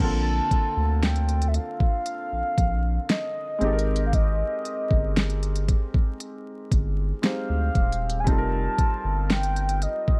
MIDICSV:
0, 0, Header, 1, 5, 480
1, 0, Start_track
1, 0, Tempo, 1034483
1, 1917, Time_signature, 4, 2, 24, 8
1, 4732, End_track
2, 0, Start_track
2, 0, Title_t, "Soft synth lead"
2, 0, Program_c, 0, 80
2, 0, Note_on_c, 0, 81, 117
2, 481, Note_on_c, 0, 79, 100
2, 487, Note_off_c, 0, 81, 0
2, 687, Note_on_c, 0, 76, 74
2, 694, Note_off_c, 0, 79, 0
2, 720, Note_on_c, 0, 77, 120
2, 727, Note_off_c, 0, 76, 0
2, 1437, Note_off_c, 0, 77, 0
2, 1440, Note_on_c, 0, 75, 90
2, 1868, Note_off_c, 0, 75, 0
2, 1886, Note_on_c, 0, 77, 58
2, 1921, Note_on_c, 0, 75, 87
2, 1928, Note_off_c, 0, 77, 0
2, 2639, Note_off_c, 0, 75, 0
2, 3359, Note_on_c, 0, 77, 103
2, 3804, Note_on_c, 0, 80, 83
2, 3811, Note_off_c, 0, 77, 0
2, 3837, Note_on_c, 0, 81, 114
2, 3844, Note_off_c, 0, 80, 0
2, 4317, Note_off_c, 0, 81, 0
2, 4322, Note_on_c, 0, 79, 107
2, 4558, Note_on_c, 0, 75, 116
2, 4565, Note_off_c, 0, 79, 0
2, 4732, Note_off_c, 0, 75, 0
2, 4732, End_track
3, 0, Start_track
3, 0, Title_t, "Felt piano"
3, 0, Program_c, 1, 0
3, 0, Note_on_c, 1, 58, 63
3, 0, Note_on_c, 1, 60, 61
3, 3, Note_on_c, 1, 50, 61
3, 10, Note_on_c, 1, 65, 60
3, 20, Note_on_c, 1, 69, 76
3, 75, Control_c, 1, 64, 127
3, 1652, Note_off_c, 1, 58, 0
3, 1656, Note_off_c, 1, 60, 0
3, 1661, Note_off_c, 1, 50, 0
3, 1664, Note_on_c, 1, 56, 65
3, 1665, Note_off_c, 1, 65, 0
3, 1670, Note_off_c, 1, 69, 0
3, 1673, Note_on_c, 1, 60, 61
3, 1682, Note_on_c, 1, 63, 62
3, 1683, Control_c, 1, 64, 0
3, 1690, Note_on_c, 1, 67, 62
3, 1699, Note_on_c, 1, 69, 59
3, 1718, Note_off_c, 1, 69, 0
3, 1729, Note_on_c, 1, 70, 74
3, 1768, Control_c, 1, 64, 127
3, 3332, Note_off_c, 1, 56, 0
3, 3336, Note_off_c, 1, 60, 0
3, 3341, Note_off_c, 1, 63, 0
3, 3345, Note_off_c, 1, 67, 0
3, 3351, Note_on_c, 1, 56, 49
3, 3356, Note_on_c, 1, 60, 46
3, 3360, Note_on_c, 1, 63, 44
3, 3364, Note_off_c, 1, 70, 0
3, 3364, Note_on_c, 1, 67, 45
3, 3369, Note_on_c, 1, 72, 56
3, 3823, Note_on_c, 1, 55, 68
3, 3825, Note_off_c, 1, 60, 0
3, 3832, Note_on_c, 1, 60, 63
3, 3833, Note_off_c, 1, 63, 0
3, 3834, Note_off_c, 1, 56, 0
3, 3840, Note_on_c, 1, 63, 63
3, 3841, Note_off_c, 1, 67, 0
3, 3843, Note_off_c, 1, 72, 0
3, 3844, Control_c, 1, 64, 0
3, 3849, Note_on_c, 1, 65, 61
3, 3858, Note_on_c, 1, 69, 59
3, 3878, Note_off_c, 1, 69, 0
3, 3889, Note_on_c, 1, 70, 72
3, 3920, Control_c, 1, 64, 127
3, 4732, Note_off_c, 1, 55, 0
3, 4732, Note_off_c, 1, 60, 0
3, 4732, Note_off_c, 1, 63, 0
3, 4732, Note_off_c, 1, 65, 0
3, 4732, Note_off_c, 1, 70, 0
3, 4732, End_track
4, 0, Start_track
4, 0, Title_t, "Sub bass"
4, 0, Program_c, 2, 38
4, 0, Note_on_c, 2, 34, 111
4, 187, Note_off_c, 2, 34, 0
4, 356, Note_on_c, 2, 38, 99
4, 737, Note_off_c, 2, 38, 0
4, 1078, Note_on_c, 2, 34, 48
4, 1126, Note_off_c, 2, 34, 0
4, 1196, Note_on_c, 2, 34, 96
4, 1387, Note_off_c, 2, 34, 0
4, 1675, Note_on_c, 2, 32, 102
4, 2057, Note_off_c, 2, 32, 0
4, 2277, Note_on_c, 2, 31, 95
4, 2658, Note_off_c, 2, 31, 0
4, 3117, Note_on_c, 2, 31, 97
4, 3307, Note_off_c, 2, 31, 0
4, 3478, Note_on_c, 2, 38, 80
4, 3573, Note_off_c, 2, 38, 0
4, 3597, Note_on_c, 2, 27, 96
4, 3837, Note_on_c, 2, 29, 114
4, 3844, Note_off_c, 2, 27, 0
4, 4027, Note_off_c, 2, 29, 0
4, 4196, Note_on_c, 2, 31, 92
4, 4577, Note_off_c, 2, 31, 0
4, 4732, End_track
5, 0, Start_track
5, 0, Title_t, "Drums"
5, 237, Note_on_c, 9, 36, 89
5, 238, Note_on_c, 9, 42, 55
5, 283, Note_off_c, 9, 36, 0
5, 284, Note_off_c, 9, 42, 0
5, 477, Note_on_c, 9, 42, 40
5, 479, Note_on_c, 9, 38, 114
5, 523, Note_off_c, 9, 42, 0
5, 525, Note_off_c, 9, 38, 0
5, 537, Note_on_c, 9, 42, 49
5, 583, Note_off_c, 9, 42, 0
5, 597, Note_on_c, 9, 42, 61
5, 643, Note_off_c, 9, 42, 0
5, 658, Note_on_c, 9, 42, 73
5, 704, Note_off_c, 9, 42, 0
5, 715, Note_on_c, 9, 42, 73
5, 762, Note_off_c, 9, 42, 0
5, 837, Note_on_c, 9, 36, 93
5, 883, Note_off_c, 9, 36, 0
5, 955, Note_on_c, 9, 42, 77
5, 1001, Note_off_c, 9, 42, 0
5, 1196, Note_on_c, 9, 36, 90
5, 1197, Note_on_c, 9, 42, 61
5, 1242, Note_off_c, 9, 36, 0
5, 1243, Note_off_c, 9, 42, 0
5, 1436, Note_on_c, 9, 42, 64
5, 1437, Note_on_c, 9, 38, 127
5, 1482, Note_off_c, 9, 42, 0
5, 1484, Note_off_c, 9, 38, 0
5, 1676, Note_on_c, 9, 42, 35
5, 1723, Note_off_c, 9, 42, 0
5, 1757, Note_on_c, 9, 42, 49
5, 1804, Note_off_c, 9, 42, 0
5, 1837, Note_on_c, 9, 42, 58
5, 1883, Note_off_c, 9, 42, 0
5, 1916, Note_on_c, 9, 42, 74
5, 1917, Note_on_c, 9, 36, 114
5, 1963, Note_off_c, 9, 36, 0
5, 1963, Note_off_c, 9, 42, 0
5, 2158, Note_on_c, 9, 42, 53
5, 2205, Note_off_c, 9, 42, 0
5, 2277, Note_on_c, 9, 36, 95
5, 2323, Note_off_c, 9, 36, 0
5, 2398, Note_on_c, 9, 42, 40
5, 2399, Note_on_c, 9, 38, 110
5, 2444, Note_off_c, 9, 42, 0
5, 2445, Note_off_c, 9, 38, 0
5, 2458, Note_on_c, 9, 42, 50
5, 2505, Note_off_c, 9, 42, 0
5, 2519, Note_on_c, 9, 42, 61
5, 2565, Note_off_c, 9, 42, 0
5, 2578, Note_on_c, 9, 42, 70
5, 2625, Note_off_c, 9, 42, 0
5, 2638, Note_on_c, 9, 36, 96
5, 2638, Note_on_c, 9, 42, 75
5, 2684, Note_off_c, 9, 36, 0
5, 2684, Note_off_c, 9, 42, 0
5, 2757, Note_on_c, 9, 36, 97
5, 2804, Note_off_c, 9, 36, 0
5, 2878, Note_on_c, 9, 42, 83
5, 2924, Note_off_c, 9, 42, 0
5, 3116, Note_on_c, 9, 36, 93
5, 3117, Note_on_c, 9, 42, 63
5, 3162, Note_off_c, 9, 36, 0
5, 3163, Note_off_c, 9, 42, 0
5, 3357, Note_on_c, 9, 42, 65
5, 3359, Note_on_c, 9, 38, 123
5, 3403, Note_off_c, 9, 42, 0
5, 3405, Note_off_c, 9, 38, 0
5, 3596, Note_on_c, 9, 42, 36
5, 3597, Note_on_c, 9, 36, 99
5, 3643, Note_off_c, 9, 36, 0
5, 3643, Note_off_c, 9, 42, 0
5, 3677, Note_on_c, 9, 42, 46
5, 3723, Note_off_c, 9, 42, 0
5, 3756, Note_on_c, 9, 42, 55
5, 3803, Note_off_c, 9, 42, 0
5, 3836, Note_on_c, 9, 36, 109
5, 3836, Note_on_c, 9, 42, 76
5, 3883, Note_off_c, 9, 36, 0
5, 3883, Note_off_c, 9, 42, 0
5, 4076, Note_on_c, 9, 36, 91
5, 4076, Note_on_c, 9, 42, 55
5, 4123, Note_off_c, 9, 36, 0
5, 4123, Note_off_c, 9, 42, 0
5, 4316, Note_on_c, 9, 42, 43
5, 4317, Note_on_c, 9, 38, 112
5, 4362, Note_off_c, 9, 42, 0
5, 4363, Note_off_c, 9, 38, 0
5, 4377, Note_on_c, 9, 42, 53
5, 4423, Note_off_c, 9, 42, 0
5, 4437, Note_on_c, 9, 42, 59
5, 4484, Note_off_c, 9, 42, 0
5, 4495, Note_on_c, 9, 42, 70
5, 4542, Note_off_c, 9, 42, 0
5, 4555, Note_on_c, 9, 42, 74
5, 4602, Note_off_c, 9, 42, 0
5, 4676, Note_on_c, 9, 36, 91
5, 4722, Note_off_c, 9, 36, 0
5, 4732, End_track
0, 0, End_of_file